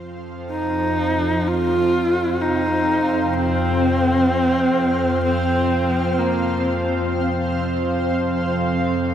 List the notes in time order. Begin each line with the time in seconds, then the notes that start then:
Already playing: F2 F3 C4 C5 F5
0.51 D#4
1.47 F4
2.41 D#4
3.34 C4
5.25 C4
6.19 A#3